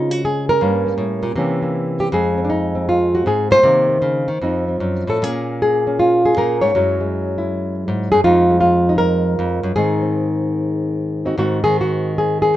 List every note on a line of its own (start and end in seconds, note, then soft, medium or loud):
0.00 0.60 C#3 medium
0.00 0.60 G#3 soft
0.00 0.61 C4 soft
0.00 0.11 D#4 medium
0.00 0.23 F4 medium
0.11 0.24 F#4 medium
0.25 0.49 G#4 medium
0.49 1.37 A#4 loud
0.61 0.97 G2 medium
0.61 1.35 G3 soft
0.61 0.85 A#3 soft
0.61 1.36 C#4 soft
0.86 1.35 A#3 soft
0.98 1.23 A2 medium
1.23 1.35 A#2 medium
1.36 2.10 C3 medium
1.36 2.10 E3 soft
1.36 1.61 A#3 soft
1.36 2.11 C#4 soft
1.36 1.99 G4 soft
1.62 2.11 A#3 soft
2.00 2.07 G4 medium
2.12 3.26 F2 medium
2.12 3.63 G#3 soft
2.12 2.37 C4 soft
2.12 2.84 G#4 medium
2.38 2.44 C4 soft
2.44 2.49 D4 medium
2.50 3.13 D#4 medium
2.75 3.64 C4 soft
2.89 3.26 F4 medium
3.15 3.27 F#4 medium
3.26 3.51 G#2 medium
3.26 3.51 G#4 medium
3.51 3.63 A#2 medium
3.51 5.08 C5 loud
3.63 4.01 C3 medium
3.63 4.27 D#3 soft
3.63 3.88 A#3 soft
3.63 4.41 D#4 soft
4.02 4.28 C#3 medium
4.28 4.41 D#3 medium
4.42 4.80 F2 medium
4.42 5.20 F3 soft
4.42 4.67 C4 soft
4.42 5.24 D#4 soft
4.68 5.20 C4 soft
4.80 5.07 F#2 medium
5.07 5.21 A2 medium
5.07 5.22 A4 medium
5.22 6.36 A#2 medium
5.22 6.74 A#3 soft
5.22 5.87 C#4 soft
5.22 5.61 G#4 medium
5.62 6.24 G#4 medium
5.87 6.74 C#4 soft
5.99 6.37 F4 medium
6.25 6.75 G#4 medium
6.37 6.62 A#2 medium
6.37 6.61 A#4 medium
6.61 6.75 G#2 medium
6.61 7.74 C#5 loud
6.75 7.88 F#2 medium
6.75 8.24 F#3 soft
6.75 7.00 G#3 soft
6.75 7.37 E4 soft
7.00 8.26 G#3 soft
7.38 8.24 E4 soft
7.88 8.13 G#2 medium
8.12 8.24 F#2 medium
8.12 8.24 G#4 loud
8.24 9.38 F2 medium
8.24 9.76 F3 soft
8.24 8.50 G#3 soft
8.24 8.89 D#4 soft
8.24 8.59 F4 medium
8.50 9.77 G#3 soft
8.61 8.98 F4 medium
8.89 9.78 D#4 medium
8.98 9.75 A#4 loud
9.39 9.63 F2 medium
9.63 9.75 F#2 medium
9.76 11.35 G#2 medium
9.76 11.37 D#3 medium
9.76 10.01 C4 soft
9.76 11.24 D#4 medium
9.76 11.26 G#4 medium
10.02 11.23 C4 soft
11.25 11.37 C4 soft
11.25 11.37 D#4 soft
11.25 11.37 F#4 soft
11.38 12.53 G#2 medium
11.38 11.63 D#3 soft
11.38 12.57 C4 soft
11.38 12.57 D#4 soft
11.38 11.63 F#4 medium
11.64 12.57 D#3 medium
11.64 11.77 G#4 medium
11.81 12.17 F#4 medium
12.18 12.41 G#4 medium
12.42 12.57 G#4 medium